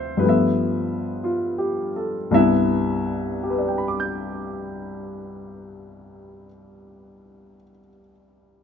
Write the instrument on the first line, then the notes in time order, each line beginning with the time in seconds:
grand piano
Already playing: D2 C3 F3 F4 C5 E5
0.17 G2 F3 B4
0.23 A3 B3 F4
0.29 E5
1.24 F4
1.58 G4
1.96 A4
2.31 C2 G2 B3 E4 E5
3.43 G4
3.50 B4
3.58 D5
3.68 G5
3.78 B5
3.88 D6
4.00 G6